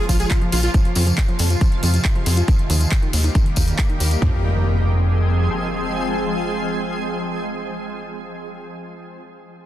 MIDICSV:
0, 0, Header, 1, 8, 480
1, 0, Start_track
1, 0, Key_signature, -4, "minor"
1, 0, Tempo, 434783
1, 819, Time_signature, 4, 2, 24, 8
1, 10664, End_track
2, 0, Start_track
2, 0, Title_t, "Supersaw synth"
2, 0, Program_c, 0, 81
2, 98, Note_on_c, 0, 65, 65
2, 173, Note_off_c, 0, 65, 0
2, 219, Note_on_c, 0, 68, 92
2, 293, Note_off_c, 0, 68, 0
2, 339, Note_on_c, 0, 65, 66
2, 413, Note_off_c, 0, 65, 0
2, 579, Note_on_c, 0, 65, 62
2, 654, Note_off_c, 0, 65, 0
2, 699, Note_on_c, 0, 65, 61
2, 774, Note_off_c, 0, 65, 0
2, 10664, End_track
3, 0, Start_track
3, 0, Title_t, "Ambient pad"
3, 0, Program_c, 1, 92
3, 0, Note_on_c, 1, 49, 81
3, 0, Note_on_c, 1, 53, 73
3, 0, Note_on_c, 1, 58, 71
3, 0, Note_on_c, 1, 65, 88
3, 782, Note_off_c, 1, 65, 0
3, 801, Note_off_c, 1, 49, 0
3, 801, Note_off_c, 1, 58, 0
3, 820, Note_on_c, 1, 48, 76
3, 820, Note_on_c, 1, 65, 89
3, 821, Note_on_c, 1, 56, 69
3, 2697, Note_off_c, 1, 53, 0
3, 2721, Note_off_c, 1, 48, 0
3, 2721, Note_off_c, 1, 56, 0
3, 2721, Note_off_c, 1, 65, 0
3, 2738, Note_on_c, 1, 51, 79
3, 2738, Note_on_c, 1, 55, 70
3, 2738, Note_on_c, 1, 58, 72
3, 2739, Note_on_c, 1, 67, 84
3, 4640, Note_off_c, 1, 51, 0
3, 4640, Note_off_c, 1, 55, 0
3, 4640, Note_off_c, 1, 58, 0
3, 4640, Note_off_c, 1, 67, 0
3, 4660, Note_on_c, 1, 56, 71
3, 4660, Note_on_c, 1, 60, 68
3, 4660, Note_on_c, 1, 68, 86
3, 4661, Note_on_c, 1, 53, 77
3, 9339, Note_off_c, 1, 53, 0
3, 9339, Note_off_c, 1, 56, 0
3, 9339, Note_off_c, 1, 60, 0
3, 9339, Note_off_c, 1, 68, 0
3, 10664, End_track
4, 0, Start_track
4, 0, Title_t, "Synth pluck"
4, 0, Program_c, 2, 84
4, 99, Note_on_c, 2, 53, 93
4, 162, Note_off_c, 2, 53, 0
4, 220, Note_on_c, 2, 53, 77
4, 283, Note_off_c, 2, 53, 0
4, 459, Note_on_c, 2, 53, 101
4, 522, Note_off_c, 2, 53, 0
4, 699, Note_on_c, 2, 65, 77
4, 762, Note_off_c, 2, 65, 0
4, 819, Note_on_c, 2, 53, 98
4, 913, Note_off_c, 2, 53, 0
4, 1058, Note_on_c, 2, 53, 101
4, 1122, Note_off_c, 2, 53, 0
4, 1179, Note_on_c, 2, 53, 81
4, 1242, Note_off_c, 2, 53, 0
4, 1419, Note_on_c, 2, 53, 107
4, 1482, Note_off_c, 2, 53, 0
4, 1659, Note_on_c, 2, 65, 80
4, 1722, Note_off_c, 2, 65, 0
4, 1779, Note_on_c, 2, 53, 101
4, 1873, Note_off_c, 2, 53, 0
4, 2019, Note_on_c, 2, 53, 99
4, 2082, Note_off_c, 2, 53, 0
4, 2139, Note_on_c, 2, 53, 76
4, 2202, Note_off_c, 2, 53, 0
4, 2379, Note_on_c, 2, 53, 104
4, 2442, Note_off_c, 2, 53, 0
4, 2620, Note_on_c, 2, 65, 78
4, 2682, Note_off_c, 2, 65, 0
4, 2739, Note_on_c, 2, 51, 96
4, 2833, Note_off_c, 2, 51, 0
4, 2979, Note_on_c, 2, 51, 99
4, 3042, Note_off_c, 2, 51, 0
4, 3100, Note_on_c, 2, 51, 76
4, 3162, Note_off_c, 2, 51, 0
4, 3339, Note_on_c, 2, 51, 108
4, 3402, Note_off_c, 2, 51, 0
4, 3579, Note_on_c, 2, 63, 78
4, 3642, Note_off_c, 2, 63, 0
4, 3699, Note_on_c, 2, 51, 107
4, 3793, Note_off_c, 2, 51, 0
4, 3939, Note_on_c, 2, 51, 94
4, 4002, Note_off_c, 2, 51, 0
4, 4059, Note_on_c, 2, 51, 76
4, 4122, Note_off_c, 2, 51, 0
4, 4299, Note_on_c, 2, 51, 95
4, 4362, Note_off_c, 2, 51, 0
4, 4539, Note_on_c, 2, 63, 76
4, 4602, Note_off_c, 2, 63, 0
4, 4660, Note_on_c, 2, 53, 87
4, 4883, Note_off_c, 2, 53, 0
4, 10664, End_track
5, 0, Start_track
5, 0, Title_t, "Analog synth bass"
5, 0, Program_c, 3, 38
5, 101, Note_on_c, 3, 34, 81
5, 278, Note_off_c, 3, 34, 0
5, 581, Note_on_c, 3, 34, 91
5, 759, Note_off_c, 3, 34, 0
5, 1061, Note_on_c, 3, 41, 101
5, 1239, Note_off_c, 3, 41, 0
5, 1540, Note_on_c, 3, 41, 98
5, 1718, Note_off_c, 3, 41, 0
5, 2021, Note_on_c, 3, 41, 80
5, 2199, Note_off_c, 3, 41, 0
5, 2498, Note_on_c, 3, 41, 92
5, 2677, Note_off_c, 3, 41, 0
5, 2980, Note_on_c, 3, 39, 100
5, 3158, Note_off_c, 3, 39, 0
5, 3460, Note_on_c, 3, 39, 99
5, 3638, Note_off_c, 3, 39, 0
5, 3940, Note_on_c, 3, 39, 82
5, 4118, Note_off_c, 3, 39, 0
5, 4419, Note_on_c, 3, 39, 87
5, 4598, Note_off_c, 3, 39, 0
5, 4660, Note_on_c, 3, 41, 93
5, 6055, Note_off_c, 3, 41, 0
5, 10664, End_track
6, 0, Start_track
6, 0, Title_t, "Downlifter"
6, 0, Program_c, 4, 103
6, 0, Note_on_c, 4, 60, 76
6, 820, Note_off_c, 4, 60, 0
6, 10664, End_track
7, 0, Start_track
7, 0, Title_t, "Impact"
7, 0, Program_c, 5, 103
7, 4659, Note_on_c, 5, 60, 65
7, 9495, Note_off_c, 5, 60, 0
7, 10664, End_track
8, 0, Start_track
8, 0, Title_t, "Drums"
8, 99, Note_on_c, 9, 54, 97
8, 101, Note_on_c, 9, 36, 60
8, 101, Note_on_c, 9, 46, 113
8, 209, Note_off_c, 9, 54, 0
8, 211, Note_off_c, 9, 36, 0
8, 212, Note_off_c, 9, 46, 0
8, 218, Note_on_c, 9, 54, 50
8, 220, Note_on_c, 9, 42, 53
8, 329, Note_off_c, 9, 54, 0
8, 330, Note_off_c, 9, 42, 0
8, 339, Note_on_c, 9, 39, 122
8, 339, Note_on_c, 9, 42, 52
8, 340, Note_on_c, 9, 36, 118
8, 449, Note_off_c, 9, 39, 0
8, 449, Note_off_c, 9, 42, 0
8, 451, Note_off_c, 9, 36, 0
8, 458, Note_on_c, 9, 42, 26
8, 569, Note_off_c, 9, 42, 0
8, 579, Note_on_c, 9, 46, 111
8, 582, Note_on_c, 9, 54, 89
8, 689, Note_off_c, 9, 46, 0
8, 692, Note_off_c, 9, 54, 0
8, 692, Note_on_c, 9, 54, 52
8, 699, Note_on_c, 9, 42, 54
8, 802, Note_off_c, 9, 54, 0
8, 809, Note_off_c, 9, 42, 0
8, 815, Note_on_c, 9, 54, 40
8, 819, Note_on_c, 9, 42, 52
8, 820, Note_on_c, 9, 36, 127
8, 925, Note_off_c, 9, 54, 0
8, 929, Note_off_c, 9, 42, 0
8, 931, Note_off_c, 9, 36, 0
8, 940, Note_on_c, 9, 42, 26
8, 1050, Note_off_c, 9, 42, 0
8, 1053, Note_on_c, 9, 54, 98
8, 1059, Note_on_c, 9, 46, 110
8, 1163, Note_off_c, 9, 54, 0
8, 1170, Note_off_c, 9, 46, 0
8, 1179, Note_on_c, 9, 42, 49
8, 1185, Note_on_c, 9, 54, 56
8, 1290, Note_off_c, 9, 42, 0
8, 1295, Note_off_c, 9, 54, 0
8, 1299, Note_on_c, 9, 39, 118
8, 1299, Note_on_c, 9, 42, 51
8, 1300, Note_on_c, 9, 36, 127
8, 1410, Note_off_c, 9, 39, 0
8, 1410, Note_off_c, 9, 42, 0
8, 1411, Note_off_c, 9, 36, 0
8, 1419, Note_on_c, 9, 42, 25
8, 1530, Note_off_c, 9, 42, 0
8, 1532, Note_on_c, 9, 54, 93
8, 1539, Note_on_c, 9, 46, 118
8, 1643, Note_off_c, 9, 54, 0
8, 1650, Note_off_c, 9, 46, 0
8, 1659, Note_on_c, 9, 42, 48
8, 1660, Note_on_c, 9, 54, 52
8, 1769, Note_off_c, 9, 42, 0
8, 1771, Note_off_c, 9, 54, 0
8, 1779, Note_on_c, 9, 42, 49
8, 1780, Note_on_c, 9, 36, 120
8, 1889, Note_off_c, 9, 42, 0
8, 1890, Note_off_c, 9, 36, 0
8, 1899, Note_on_c, 9, 42, 24
8, 2009, Note_off_c, 9, 42, 0
8, 2018, Note_on_c, 9, 46, 105
8, 2024, Note_on_c, 9, 54, 84
8, 2128, Note_off_c, 9, 46, 0
8, 2135, Note_off_c, 9, 54, 0
8, 2138, Note_on_c, 9, 42, 51
8, 2148, Note_on_c, 9, 54, 56
8, 2248, Note_off_c, 9, 42, 0
8, 2259, Note_off_c, 9, 54, 0
8, 2259, Note_on_c, 9, 39, 114
8, 2259, Note_on_c, 9, 42, 49
8, 2260, Note_on_c, 9, 36, 121
8, 2370, Note_off_c, 9, 39, 0
8, 2370, Note_off_c, 9, 42, 0
8, 2371, Note_off_c, 9, 36, 0
8, 2379, Note_on_c, 9, 42, 23
8, 2489, Note_off_c, 9, 42, 0
8, 2496, Note_on_c, 9, 54, 81
8, 2498, Note_on_c, 9, 46, 111
8, 2606, Note_off_c, 9, 54, 0
8, 2608, Note_off_c, 9, 46, 0
8, 2619, Note_on_c, 9, 42, 53
8, 2619, Note_on_c, 9, 54, 59
8, 2729, Note_off_c, 9, 42, 0
8, 2729, Note_off_c, 9, 54, 0
8, 2739, Note_on_c, 9, 42, 47
8, 2740, Note_on_c, 9, 36, 125
8, 2745, Note_on_c, 9, 54, 39
8, 2849, Note_off_c, 9, 42, 0
8, 2850, Note_off_c, 9, 36, 0
8, 2855, Note_off_c, 9, 54, 0
8, 2860, Note_on_c, 9, 42, 25
8, 2970, Note_off_c, 9, 42, 0
8, 2978, Note_on_c, 9, 46, 109
8, 2988, Note_on_c, 9, 54, 83
8, 3089, Note_off_c, 9, 46, 0
8, 3098, Note_off_c, 9, 54, 0
8, 3099, Note_on_c, 9, 42, 46
8, 3102, Note_on_c, 9, 54, 55
8, 3209, Note_off_c, 9, 42, 0
8, 3213, Note_off_c, 9, 54, 0
8, 3219, Note_on_c, 9, 39, 111
8, 3219, Note_on_c, 9, 42, 49
8, 3220, Note_on_c, 9, 36, 125
8, 3329, Note_off_c, 9, 39, 0
8, 3329, Note_off_c, 9, 42, 0
8, 3330, Note_off_c, 9, 36, 0
8, 3340, Note_on_c, 9, 42, 24
8, 3450, Note_off_c, 9, 42, 0
8, 3458, Note_on_c, 9, 54, 94
8, 3459, Note_on_c, 9, 46, 109
8, 3568, Note_off_c, 9, 54, 0
8, 3569, Note_off_c, 9, 46, 0
8, 3579, Note_on_c, 9, 42, 46
8, 3579, Note_on_c, 9, 54, 51
8, 3689, Note_off_c, 9, 42, 0
8, 3689, Note_off_c, 9, 54, 0
8, 3697, Note_on_c, 9, 54, 36
8, 3700, Note_on_c, 9, 36, 115
8, 3700, Note_on_c, 9, 42, 48
8, 3807, Note_off_c, 9, 54, 0
8, 3810, Note_off_c, 9, 36, 0
8, 3810, Note_off_c, 9, 42, 0
8, 3820, Note_on_c, 9, 42, 24
8, 3931, Note_off_c, 9, 42, 0
8, 3932, Note_on_c, 9, 54, 95
8, 3939, Note_on_c, 9, 46, 99
8, 3940, Note_on_c, 9, 36, 60
8, 4042, Note_off_c, 9, 54, 0
8, 4049, Note_off_c, 9, 46, 0
8, 4050, Note_off_c, 9, 36, 0
8, 4055, Note_on_c, 9, 54, 47
8, 4059, Note_on_c, 9, 42, 50
8, 4165, Note_off_c, 9, 54, 0
8, 4170, Note_off_c, 9, 42, 0
8, 4178, Note_on_c, 9, 54, 43
8, 4179, Note_on_c, 9, 39, 113
8, 4179, Note_on_c, 9, 42, 48
8, 4180, Note_on_c, 9, 36, 119
8, 4288, Note_off_c, 9, 54, 0
8, 4290, Note_off_c, 9, 36, 0
8, 4290, Note_off_c, 9, 39, 0
8, 4290, Note_off_c, 9, 42, 0
8, 4300, Note_on_c, 9, 42, 23
8, 4410, Note_off_c, 9, 42, 0
8, 4419, Note_on_c, 9, 46, 109
8, 4421, Note_on_c, 9, 54, 95
8, 4530, Note_off_c, 9, 46, 0
8, 4531, Note_off_c, 9, 54, 0
8, 4540, Note_on_c, 9, 42, 49
8, 4544, Note_on_c, 9, 54, 51
8, 4650, Note_off_c, 9, 42, 0
8, 4654, Note_off_c, 9, 54, 0
8, 4659, Note_on_c, 9, 36, 101
8, 4659, Note_on_c, 9, 43, 106
8, 4769, Note_off_c, 9, 43, 0
8, 4770, Note_off_c, 9, 36, 0
8, 10664, End_track
0, 0, End_of_file